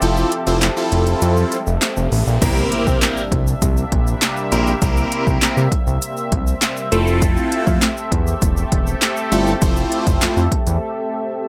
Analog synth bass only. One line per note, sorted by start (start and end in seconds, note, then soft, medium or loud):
0.02 0.25 F1 loud
0.47 0.70 F1 loud
0.92 1.15 F1 medium
1.22 1.45 F2 loud
1.67 1.78 F1 medium
1.97 2.08 F1 medium
2.12 2.23 A1 medium
2.27 2.38 A#1 medium
2.42 2.65 C2 loud
2.87 2.98 C3 loud
3.32 3.55 C2 medium
3.62 3.85 C2 loud
3.92 4.15 A#1 loud
4.52 4.75 A#1 medium
4.82 5.05 C2 loud
5.27 5.38 C2 loud
5.42 5.48 C3 medium
5.57 5.68 C3 loud
5.87 5.98 C2 medium
6.32 6.55 C2 medium
6.92 7.37 F1 medium
7.67 7.78 F2 loud
8.12 8.35 E2 loud
8.42 8.65 E1 loud
8.72 8.95 E1 medium
9.32 9.55 G1 medium
9.62 9.85 F1 loud
10.07 10.18 F1 loud
10.22 10.28 F2 medium
10.37 10.48 F2 loud
10.67 10.78 E2 medium